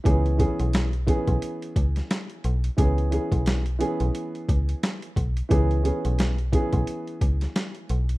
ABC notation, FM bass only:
X:1
M:4/4
L:1/16
Q:"Swing 16ths" 1/4=88
K:C#m
V:1 name="FM bass" clef=bass
C,,3 B,,,4 B,,, z2 C,,2 z2 B,,,2 | C,,3 B,,,4 B,,, z2 C,,2 z2 B,,,2 | C,,3 B,,,4 B,,, z2 C,,2 z2 B,,,2 |]